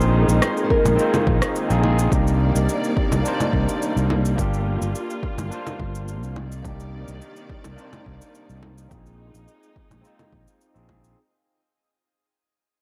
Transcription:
0.00 0.25 A#1 medium
0.00 4.34 D#3 medium
0.00 2.10 G#3 medium
0.00 11.14 A#3 medium
0.00 0.94 C4 medium
0.00 0.95 D#4 medium
0.00 0.96 F4 medium
0.00 0.97 G#4 medium
0.00 0.38 C5 loud
0.00 shaker soft
0.28 0.40 A#1 medium
0.28 shaker medium
0.42 0.63 C5 medium
0.42 cross-stick medium
0.42 shaker medium
0.57 shaker soft
0.64 0.70 C5 medium
0.70 1.23 A#4 medium
0.70 kick loud
0.85 0.96 A#1 medium
0.85 low conga medium
0.85 shaker medium
0.96 1.66 C4 medium
0.96 1.67 D#4 medium
0.96 1.68 F4 medium
0.96 shaker soft
1.01 1.68 C5 loud
1.14 low conga medium
1.14 shaker soft
1.27 1.39 A#1 medium
1.27 kick loud
1.42 cross-stick medium
1.42 shaker medium
1.56 shaker medium
1.69 2.08 A#1 medium
1.69 1.80 C4 medium
1.69 1.80 D#4 medium
1.69 1.80 F4 medium
1.69 1.81 G#4 medium
1.69 shaker soft
1.82 2.08 C4 medium
1.82 2.08 D#4 medium
1.82 2.09 F4 medium
1.82 2.09 G#4 medium
1.82 low conga medium
1.99 shaker medium
2.09 2.51 C2 medium
2.09 4.36 C3 medium
2.09 6.32 G3 medium
2.09 3.20 A#3 medium
2.09 3.21 D4 medium
2.09 3.22 D#4 medium
2.09 4.36 D5 medium
2.09 kick loud
2.09 shaker soft
2.14 3.23 G4 medium
2.27 shaker soft
2.55 2.66 C2 medium
2.55 shaker medium
2.69 shaker soft
2.84 shaker soft
2.97 kick loud
3.12 3.23 C2 medium
3.12 low conga medium
3.12 shaker medium
3.22 4.33 A#3 medium
3.22 4.34 D4 medium
3.22 4.35 D#4 medium
3.22 shaker soft
3.28 4.36 C5 loud
3.40 low conga medium
3.40 shaker soft
3.53 3.66 C2 medium
3.53 kick medium
3.69 shaker medium
3.82 shaker soft
3.96 4.35 C2 medium
3.96 shaker soft
4.10 low conga medium
4.25 shaker medium
4.35 4.78 G1 medium
4.35 5.47 A#3 medium
4.35 5.48 D4 medium
4.35 6.34 F4 medium
4.35 5.48 F4 medium
4.35 kick loud
4.35 shaker soft
4.41 5.49 G4 medium
4.54 shaker soft
4.82 4.93 G1 medium
4.82 shaker medium
4.95 shaker soft
5.10 shaker soft
5.23 kick medium
5.38 5.49 G1 medium
5.38 low conga medium
5.38 shaker medium
5.49 6.33 A#3 medium
5.49 6.34 D4 medium
5.49 6.35 F4 medium
5.49 shaker soft
5.54 6.36 C5 loud
5.67 low conga medium
5.67 shaker soft
5.80 6.23 G1 medium
5.80 kick medium
5.95 shaker medium
6.08 shaker soft
6.23 6.61 C2 medium
6.23 shaker soft
6.36 8.89 C3 medium
6.36 8.89 D#3 medium
6.36 8.89 G3 medium
6.36 8.89 D5 medium
6.36 low conga medium
6.52 shaker medium
6.62 7.04 C2 medium
6.62 7.73 A#3 medium
6.62 7.74 D4 medium
6.62 7.75 D#4 medium
6.62 kick loud
6.62 shaker soft
6.68 7.76 G4 medium
6.80 shaker soft
7.08 7.19 C2 medium
7.08 shaker medium
7.22 shaker medium
7.36 shaker soft
7.50 kick medium
7.64 7.76 C2 medium
7.64 low conga medium
7.64 shaker medium
7.75 8.86 A#3 medium
7.75 8.87 D4 medium
7.75 8.88 D#4 medium
7.75 shaker soft
7.81 8.89 C5 medium
7.93 low conga medium
7.93 shaker soft
8.06 8.19 C2 medium
8.06 kick medium
8.21 shaker medium
8.35 shaker soft
8.50 8.88 C2 medium
8.50 shaker soft
8.63 low conga medium
8.78 shaker medium
8.89 9.31 A#1 medium
8.89 11.15 G#3 medium
8.89 10.00 C4 medium
8.89 10.01 D#4 medium
8.89 11.15 D#4 medium
8.89 10.02 F4 medium
8.89 kick loud
8.89 shaker soft
8.94 10.02 G#4 medium
9.06 shaker soft
9.34 9.46 A#1 medium
9.34 shaker medium
9.48 shaker soft
9.63 shaker soft
9.76 kick medium
9.91 10.02 A#1 medium
9.91 low conga medium
9.91 shaker medium
10.01 10.71 C4 medium
10.01 10.72 D#4 medium
10.01 10.73 F4 medium
10.01 shaker soft
10.07 10.74 C5 medium
10.19 low conga medium
10.19 shaker soft
10.33 10.45 A#1 medium
10.33 kick medium
10.48 shaker medium
10.61 shaker soft
10.74 11.14 A#1 medium
10.74 10.85 C4 medium
10.74 10.85 D#4 medium
10.74 10.86 F4 medium
10.74 10.86 G#4 medium
10.74 shaker soft
10.88 11.13 C4 medium
10.88 11.14 D#4 medium
10.88 11.14 F4 medium
10.88 11.15 G#4 medium
10.88 kick medium
10.88 low conga medium
11.04 shaker medium

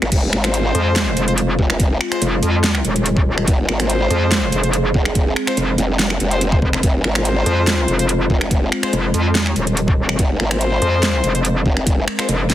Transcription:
0.00 0.10 G#1 loud
0.00 12.54 G#3 medium
0.00 12.54 C4 medium
0.00 0.11 G#4 medium
0.00 finger snap medium
0.12 0.31 F1 loud
0.12 3.46 F4 medium
0.12 kick loud
0.12 closed hi-hat medium
0.12 crash medium
0.33 0.73 G#1 medium
0.33 finger snap medium
0.44 1.25 G#3 medium
0.44 1.25 F4 medium
0.44 1.25 C5 loud
0.44 finger snap medium
0.44 closed hi-hat medium
0.54 closed hi-hat medium
0.75 1.15 F2 loud
0.75 closed hi-hat medium
0.96 snare loud
0.96 closed hi-hat medium
1.17 1.57 F1 medium
1.17 closed hi-hat medium
1.28 1.34 G#3 medium
1.28 1.34 F4 medium
1.28 1.34 C5 loud
1.28 closed hi-hat medium
1.38 closed hi-hat medium
1.59 1.99 F1 loud
1.59 kick medium
1.70 finger snap medium
1.80 kick loud
1.80 closed hi-hat medium
2.01 finger snap medium
2.12 2.22 G#3 medium
2.12 2.22 F4 medium
2.12 2.22 C5 loud
2.12 finger snap medium
2.12 closed hi-hat medium
2.22 2.41 F1 loud
2.22 closed hi-hat medium
2.43 2.83 F2 loud
2.43 closed hi-hat medium
2.64 snare loud
2.64 closed hi-hat medium
2.75 finger snap medium
2.85 3.46 D#1 loud
2.85 closed hi-hat medium
2.96 closed hi-hat medium
3.06 closed hi-hat medium
3.17 kick loud
3.38 finger snap medium
3.48 3.67 F1 loud
3.48 6.82 G#4 medium
3.48 kick loud
3.48 closed hi-hat medium
3.68 4.09 G#1 loud
3.68 finger snap medium
3.80 4.61 G#3 medium
3.80 4.61 F4 medium
3.80 4.61 C5 loud
3.80 finger snap medium
3.80 closed hi-hat medium
3.90 closed hi-hat medium
4.10 4.51 F2 loud
4.10 closed hi-hat medium
4.31 snare loud
4.31 closed hi-hat medium
4.52 4.93 F1 loud
4.52 closed hi-hat medium
4.63 4.70 G#3 medium
4.63 4.70 F4 medium
4.63 4.70 C5 loud
4.63 closed hi-hat medium
4.73 closed hi-hat medium
4.94 5.35 F1 loud
4.94 kick medium
5.05 finger snap medium
5.15 kick loud
5.15 closed hi-hat medium
5.36 finger snap medium
5.47 5.57 G#3 medium
5.47 5.57 F4 medium
5.47 5.57 C5 loud
5.47 finger snap medium
5.47 closed hi-hat medium
5.57 5.77 F1 loud
5.57 closed hi-hat medium
5.78 6.19 F1 medium
5.78 closed hi-hat medium
5.99 snare loud
5.99 closed hi-hat medium
6.10 finger snap soft
6.20 6.61 F1 loud
6.20 closed hi-hat medium
6.31 6.41 G#3 medium
6.31 6.41 F4 medium
6.31 6.41 C5 loud
6.31 closed hi-hat medium
6.41 closed hi-hat medium
6.52 6.59 G#3 medium
6.52 6.59 F4 medium
6.52 6.59 C5 medium
6.52 kick loud
6.62 6.82 F1 loud
6.62 kick medium
6.73 finger snap medium
6.83 7.03 F1 loud
6.83 10.18 F4 medium
6.83 kick loud
6.83 closed hi-hat medium
7.04 7.45 G#1 loud
7.04 finger snap medium
7.15 7.96 G#3 medium
7.15 7.96 F4 medium
7.15 7.96 C5 loud
7.15 finger snap medium
7.15 closed hi-hat soft
7.25 closed hi-hat medium
7.46 7.86 F2 medium
7.46 closed hi-hat medium
7.67 snare loud
7.67 closed hi-hat medium
7.88 8.28 F1 loud
7.88 closed hi-hat soft
7.99 8.05 G#3 medium
7.99 8.05 F4 medium
7.99 8.05 C5 loud
7.99 closed hi-hat medium
8.09 closed hi-hat medium
8.30 8.70 F1 loud
8.30 kick medium
8.41 finger snap medium
8.51 kick loud
8.51 closed hi-hat medium
8.72 finger snap medium
8.83 8.93 G#3 loud
8.83 8.93 F4 medium
8.83 8.93 C5 loud
8.83 finger snap medium
8.83 closed hi-hat soft
8.93 9.12 F1 loud
8.93 closed hi-hat medium
9.14 9.54 F2 loud
9.14 closed hi-hat medium
9.35 snare loud
9.35 closed hi-hat medium
9.46 finger snap medium
9.56 10.17 D#1 loud
9.56 closed hi-hat soft
9.67 closed hi-hat soft
9.77 closed hi-hat medium
9.88 kick loud
10.09 finger snap medium
10.19 10.38 F1 loud
10.19 12.54 A#4 medium
10.19 kick loud
10.19 closed hi-hat medium
10.40 10.80 G#1 loud
10.40 finger snap medium
10.51 11.32 G#3 medium
10.51 11.32 F4 medium
10.51 11.32 C5 medium
10.51 finger snap medium
10.51 closed hi-hat soft
10.61 closed hi-hat medium
10.82 11.22 F2 loud
10.82 closed hi-hat medium
11.03 snare loud
11.03 closed hi-hat medium
11.24 11.64 F1 medium
11.24 closed hi-hat medium
11.35 11.41 G#3 medium
11.35 11.41 F4 medium
11.35 11.41 C5 loud
11.35 closed hi-hat medium
11.45 closed hi-hat medium
11.66 12.06 F1 loud
11.66 kick medium
11.77 finger snap medium
11.87 kick loud
11.87 closed hi-hat medium
12.08 finger snap medium
12.19 12.29 G#3 medium
12.19 12.29 F4 medium
12.19 12.29 C5 loud
12.19 finger snap medium
12.19 closed hi-hat medium
12.29 12.48 F1 loud
12.29 closed hi-hat medium
12.50 12.54 D#1 loud
12.50 snare medium
12.50 closed hi-hat medium

